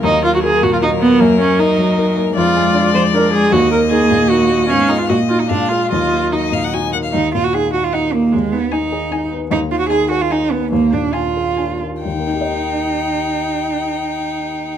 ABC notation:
X:1
M:3/4
L:1/16
Q:1/4=151
K:Ebm
V:1 name="Violin"
B12- | B12 | =d12 | e12 |
f4 e4 f4 | e4 e2 f g a2 g f | z4 g4 g4 | z4 a4 a4 |
z4 a4 a4 | z4 a4 a4 | =g12- | =g12 |]
V:2 name="Viola"
E2 F G A2 G F E2 C2 | B,2 D2 E6 z2 | F6 =c2 B2 A2 | G2 B2 A4 G4 |
D2 E F G2 F E =D2 F2 | F4 E6 z2 | z12 | z12 |
z12 | z12 | z12 | z12 |]
V:3 name="Cello"
G,12- | G,12 | A,12 | B,12 |
C4 B,4 A,4 | G,8- G,2 z2 | E2 F G A2 G F E2 B,2 | A,2 C2 E6 z2 |
E2 F G A2 G F E2 C2 | B,2 =D2 F6 z2 | E12- | E12 |]
V:4 name="Grand piano"
E,,2 B,2 [GB]2 B,,2 [GB]2 B,2 | G,,2 B,2 [EB]2 G,2 [EB]2 B,2 | F,,2 A,2 [=D=d]2 F,2 [Dd]2 A,2 | E,,2 B,2 [EB]2 B,,2 [EB]2 B,2 |
A,,2 [FA]2 B,,2 [EG]2 B,,2 [FA]2 | E,,2 B,2 [EG]2 B,,2 [EG]2 B,2 | E,,2 B,,2 E2 G2 E2 B,2 | E,,2 E,2 E2 A2 E2 C2 |
E,,2 E,2 E2 A2 E2 C2 | E,,2 B,,2 =D2 A2 D2 B,2 | [E,,E,B,E=Ge]12- | [E,,E,B,E=Ge]12 |]